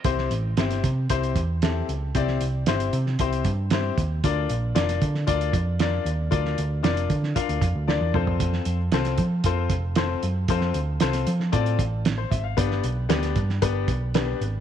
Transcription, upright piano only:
\new Staff \with { instrumentName = "Upright piano" } { \time 4/4 \key c \mixolydian \tempo 4 = 115 << { r1 | r1 | r1 | r1 |
r1 | r2. r16 c''16 e''16 f''16~ | f''16 r2. r8. | } \\ { <c' e' g' c''>8 r8 <c' e' g' c''>8 r8 <c' e' g' c''>8 r8 <c' e' g' a'>8 r8 | <c' e' g' d''>8 r8 <c' e' g' c''>8 r8 <c' e' g' c''>8 r8 <c' e' g' c''>8 r8 | <d' f' bes' d''>8 r8 <d' f' bes' d''>8 r8 <d' f' bes' d''>8 r8 <d' f' bes' d''>8 r8 | <d' f' bes' d''>8 r8 <d' f' bes' d''>8 r8 <d' f' bes' f''>8 r8 <d' f' bes' d''>8 <c' f' a' c''>8~ |
<c' f' a' c''>8 r8 <c' f' a' c''>8 r8 <c' f' a' c''>8 r8 <c' f' a' c''>8 r8 | <c' f' a' c''>8 r8 <c' f' a' c''>8 r8 <c' f' a' d''>8 r4. | <b d' g' b'>8 r8 <b d' g' b'>8 r8 <b d' g' b'>8 r8 <b d' g' b'>8 r8 | } >> }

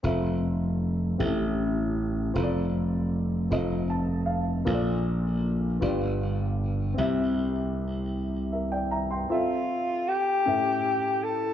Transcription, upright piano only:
\new Staff \with { instrumentName = "Upright piano" } { \time 6/8 \key f \major \tempo 4. = 52 << { r4. a,4. | r2 a''8 f''8 | bes,4. g,4. | c4. r8 <bes' e''>16 <d'' g''>16 <e'' bes''>16 <g'' c'''>16~ |
<g'' c'''>16 r4 r16 a,4. | } \\ { <c' f' a' e''>4. <c' cis' g' a' e''>4. | <c' f' a' c'' d''>4. <c' f' a' ees''>4. | <bes f' a' c'' d''>4. <b f' g' d''>4. | <c' e' g' e''>2. |
<c' f' a' e''>4. <cis' g' a' e''>4. | } >> }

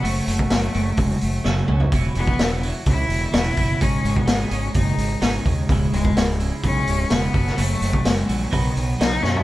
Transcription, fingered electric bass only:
\new Staff \with { instrumentName = "Fingered electric bass" } { \clef bass \time 4/4 \key fis \dorian \tempo 4 = 127 fis,,8 fis,,8 fis,,8 fis,,8 e,,8 fis,,8 fis,,8 cis,8 | e,,8 e,,8 e,,4 cis,8 e,,8 e,,8 fis,,8 | gis,,8 gis,,8 gis,,8 gis,,8 fis,,8 gis,,8 gis,,8 dis,8 | cis,,8 cis,,8 cis,,4 b,,8 cis,,8 e,,8 fis,,8 |
fis,,8 fis,,8 fis,,8 ais,,8 b,,8 b,,8 b,,8 fis,8 | }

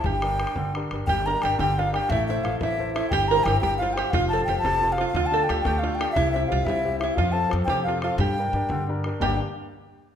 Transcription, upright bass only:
\new Staff \with { instrumentName = "Upright bass" } { \clef bass \time 6/8 \key g \dorian \tempo 4. = 118 g,,4. g,,4 g,,8 | g,,4 g,,8 g,,4. | a,,4 a,,8 a,,4. | g,,4 g,,8 g,,4. |
f,,4 f,,8 f,,4. | d,4 d,8 d,4. | c,4 c,8 c,4. | f,4 f,8 r4. |
g,4 g,8 g,4. | g,,8 r2 r8 | }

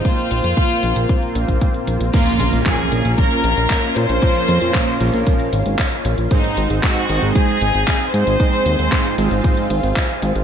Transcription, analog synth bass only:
\new Staff \with { instrumentName = "Analog synth bass" } { \clef bass \time 4/4 \key bes \minor \tempo 4 = 115 r8 bes,,16 f,16 r8 bes,,16 bes,,16 r8 bes,,16 bes,,16 r8 bes,,16 bes,,16 | r8 bes,,16 bes,,16 r8 bes,,16 bes,,16 r8 bes,,16 bes,,16 r8 bes,16 bes,,16 | r8 f,16 f,16 r8 bes,,16 bes,,16 r8 aes,,16 aes,,16 r8 bes,,16 bes,,16 | r8 aes,,16 aes,,16 r8 aes,,16 aes,,16 r8 aes,,16 aes,,16 r8 aes,16 aes,,16 |
r8 ees,16 ees,16 r8 aes,,16 aes,,16 r8 aes,,16 aes,,16 r8 aes,,16 aes,,16 | }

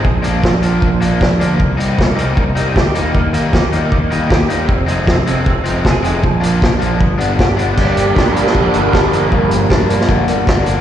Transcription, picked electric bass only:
\new Staff \with { instrumentName = "Picked electric bass" } { \clef bass \time 4/4 \key g \phrygian \tempo 4 = 155 bes,,8 bes,,8 bes,,8 bes,,8 bes,,8 bes,,8 bes,,8 d,8 | c,8 c,8 c,8 c,8 c,8 c,8 d,8 ees,8 | ees,8 ees,8 ees,8 ees,8 ees,8 ees,8 ees,8 ees,8 | f,,8 f,,8 f,,8 f,,8 f,,8 f,,8 f,,8 f,,8 |
bes,,8 bes,,8 bes,,8 bes,,8 g,,8 g,,8 g,,8 g,,8 | g,,8 g,,8 g,4 bes,,8 g,,8 g,,8 g,,8 | g,,8 g,,8 g,4 bes,,8 g,,8 g,,8 g,,8 | }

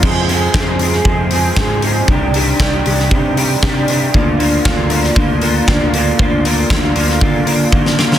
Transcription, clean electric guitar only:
\new Staff \with { instrumentName = "Clean electric guitar" } { \time 4/4 \key bes \mixolydian \tempo 4 = 117 <f, c f aes c' aes'>8 <f, c f aes c' aes'>8 <f, c f aes c' aes'>8 <f, c f aes c' aes'>8 <f, c f aes c' aes'>8 <f, c f aes c' aes'>8 <f, c f aes c' aes'>8 <f, c f aes c' aes'>8 | <c ees g d' g'>8 <c ees g d' g'>8 <c ees g d' g'>8 <c ees g d' g'>8 <c ees g d' g'>8 <c ees g d' g'>8 <c ees g d' g'>8 <c ees g d' g'>8 | <d bes d' f'>8 <d bes d' f'>8 <d bes d' f'>8 <d bes d' f'>8 <d bes d' f'>8 <d bes d' f'>8 <d bes d' f'>8 <d bes d' f'>8 | <d bes d' f'>8 <d bes d' f'>8 <d bes d' f'>8 <d bes d' f'>8 <d bes d' f'>8 <d bes d' f'>8 <d bes d' f'>8 <d bes d' f'>8 | }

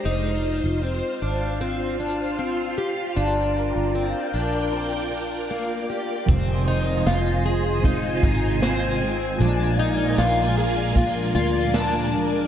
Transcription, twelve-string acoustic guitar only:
\new Staff \with { instrumentName = "Twelve-string acoustic guitar" } { \time 4/4 \key f \dorian \tempo 4 = 77 ees'4 c'8 d'8 c'8 d'8 c'8 g'8 | d'4 c'8 d'8 c'8 d'8 bes8 g'8 | c'8 ees'8 f'8 aes'8 ees'8 ees'8 c'4 | d'8 ees'8 f'8 aes'8 f'8 f'8 d'4 | }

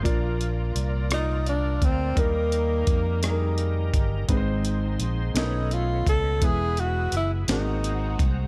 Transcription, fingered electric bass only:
\new Staff \with { instrumentName = "Fingered electric bass" } { \clef bass \time 6/8 \key bes \dorian \tempo 4. = 57 bes,,4 c,4. d,8 | ees,4 f,4. g,,8 | aes,,4 bes,,8 b,,4 cis,8 | e,,4 ges,,8 aes,,4 c,8 | }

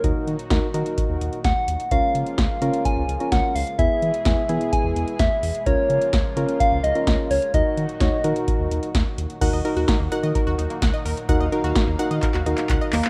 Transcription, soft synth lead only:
\new Staff \with { instrumentName = "Soft synth lead" } { \time 4/4 \key ees \minor \tempo 4 = 128 bes'8 r2 r8 ges''4 | f''2 aes''4 ges''8 f''8 | e''2 gis''4 e''4 | des''2 f''8 ees''4 des''8 |
ees''2.~ ees''8 r8 | r1 | r2. r8 bes8 | }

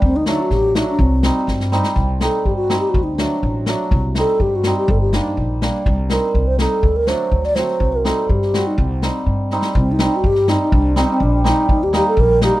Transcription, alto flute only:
\new Staff \with { instrumentName = "Alto flute" } { \time 2/4 \tempo 4 = 124 c'16 ees'16 ees'16 fis'16 g'8 ees'16 d'16 | c'4. r8 | r8 a'8 g'16 fis'8 g'16 | fis'16 ees'16 d'4 r8 |
r8 a'8 g'16 fis'8 g'16 | a'16 g'16 ees'4 r8 | r8 bes'8. c''16 a'8~ | a'16 bes'16 c''8. d''16 c''8~ |
c''16 bes'16 a'8 g'8. ees'16 | c'4. r8 | c'16 ees'16 ees'16 fis'16 g'8 ees'16 ees'16 | d'8 c'16 c'16 d'8 ees'8 |
ees'16 g'16 g'16 a'16 bes'8 g'16 g'16 | }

